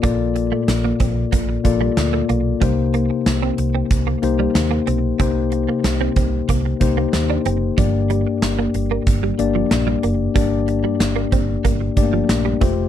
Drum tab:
HH |xxxxxxxx|xxxxxxxx|xxxxxxxx|xxxxxxxx|
SD |--o---o-|--o---o-|--o---o-|--o---o-|
BD |o--ooo--|o---o---|o--ooo--|o---o---|

HH |xxxxxxxx|
SD |--o---o-|
BD |o--ooo-o|